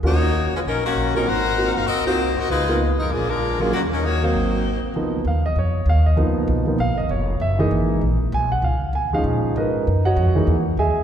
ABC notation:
X:1
M:4/4
L:1/8
Q:"Swing" 1/4=196
K:Gb
V:1 name="Grand piano"
[B,DFG] z6 [B,=CFG] | z2 [B,=CFG] z2 [B,CFG] z2 | z [B,CEF] z4 z [G,B,DF] | z3 [G,B,=Cf]3 z2 |
z2 f e d2 f e | z4 f e d2 | _f e z4 a g | f2 a f z2 [EBce]2- |
[EBce] [Gdeg]3 z2 [Ae_fa]2 |]
V:2 name="Grand piano"
z8 | z8 | z8 | z8 |
[F,B,CE] z6 z | [F,B,CE]3 [F,B,CE] z4 | z [_F,A,B,E]3 z4 | z3 [F,A,DE]4- [F,A,DE] |
z3 [_F,A,B,E] z4 |]
V:3 name="Saxophone section"
[B,EGd]3 [A,DFc] [G,DEB] [E,B,DG]2 [G,DEB] | [EB=cg]3 [EBcf] [=CGBe] [B,EGc]2 [CGBe] | [A,EFc]2 z [A,EFB] [F,B,=DA] [A,DFB]2 [F,B,DA] | [E,B,DG] [G,DEB] [B,EGd] [B,EG=c]4 z |
z8 | z8 | z8 | z8 |
z8 |]
V:4 name="Upright bass" clef=bass
E,,3 z B,,,2 B,,,2 | A,,,3 =G,,, =C,,3 A,, | D,,3 F,, B,,,4 | E,,4 A,,,3 z |
D,,2 E,,2 F,,2 E,,2 | D,,2 C,,2 (3B,,, A,,, F,,, F,,,2 | G,,,2 A,,,2 B,,,2 C,,2 | D,, z E,,2 B,,2 A,,2 |
G,,2 F,,2 _F,,2 E,, z |]